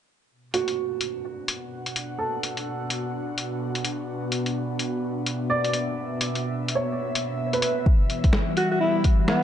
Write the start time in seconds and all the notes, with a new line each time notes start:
0.31 B2
0.54 F#4, closed hi-hat
0.62 B3
0.68 D4 F#4, closed hi-hat
1.01 closed hi-hat
1.21 F#5
1.48 closed hi-hat
1.86 closed hi-hat
1.96 closed hi-hat
2.19 A4
2.43 closed hi-hat
2.57 closed hi-hat
2.90 closed hi-hat
3.38 closed hi-hat
3.75 closed hi-hat
3.85 closed hi-hat
4.32 closed hi-hat
4.46 closed hi-hat
4.79 closed hi-hat
5.19 E5
5.26 closed hi-hat
5.50 D5
5.64 closed hi-hat
5.73 closed hi-hat
6.21 closed hi-hat
6.35 closed hi-hat
6.68 closed hi-hat
6.75 C#5
7.15 closed hi-hat
7.53 B4, closed hi-hat
7.62 closed hi-hat
7.86 E3, kick
8.01 G3
8.10 closed hi-hat
8.24 kick, closed hi-hat
8.33 snare
8.57 F#4, closed hi-hat
8.71 F#4
8.80 E4
8.93 B5
9.04 kick, closed hi-hat
9.28 B3, snare